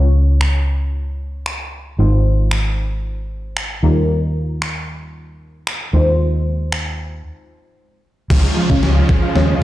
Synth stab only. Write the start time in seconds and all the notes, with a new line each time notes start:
Already playing: G#3 C#4 F4 C#5
1.98 G#3 D#4 F4 C5
3.82 G3 D#4 F4 A#4
5.93 G#3 D#4 F4 C5
8.70 G#3 C#4 F4 C#5
9.35 G#3 C#4 F4 C#5